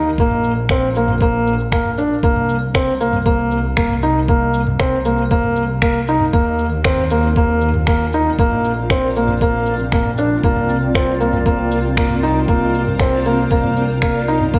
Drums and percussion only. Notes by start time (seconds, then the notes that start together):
0.18 kick, shaker
0.31 mid tom
0.44 shaker
0.69 finger snap, kick, shaker
0.95 shaker
1.08 mid tom, shaker
1.21 kick, shaker
1.47 shaker
1.60 shaker
1.72 finger snap, kick, shaker
1.85 mid tom
1.98 shaker
2.23 kick, shaker
2.36 mid tom
2.49 shaker
2.74 finger snap, kick, shaker
3.01 shaker
3.13 mid tom, shaker
3.26 kick, shaker
3.51 shaker
3.77 finger snap, kick, shaker
3.90 mid tom
4.02 shaker
4.28 kick, shaker
4.54 shaker
4.67 mid tom
4.80 finger snap, kick, shaker
5.05 shaker
5.18 shaker
5.31 kick, shaker
5.43 mid tom
5.56 shaker
5.82 finger snap, kick, shaker
6.07 shaker
6.20 mid tom
6.33 kick, shaker
6.59 shaker
6.84 finger snap, kick, shaker
6.97 mid tom
7.10 shaker
7.23 shaker
7.36 kick, shaker
7.61 shaker
7.74 mid tom
7.87 finger snap, kick, shaker
8.13 shaker
8.39 kick, shaker
8.52 mid tom
8.65 shaker
8.90 finger snap, kick, shaker
9.16 shaker
9.28 mid tom, shaker
9.41 kick, shaker
9.66 shaker
9.79 shaker
9.92 finger snap, kick, shaker
10.05 mid tom
10.18 shaker
10.44 kick, shaker
10.57 mid tom
10.69 shaker
10.95 finger snap, kick, shaker
11.21 shaker
11.33 mid tom, shaker
11.46 kick, shaker
11.71 shaker
11.97 finger snap, kick, shaker
12.10 mid tom
12.23 shaker
12.48 kick, shaker
12.75 shaker
12.87 mid tom
12.99 finger snap, kick, shaker
13.25 shaker
13.38 shaker
13.51 kick, shaker
13.64 mid tom
13.76 shaker
14.02 finger snap, kick, shaker
14.28 shaker
14.41 mid tom
14.54 kick, shaker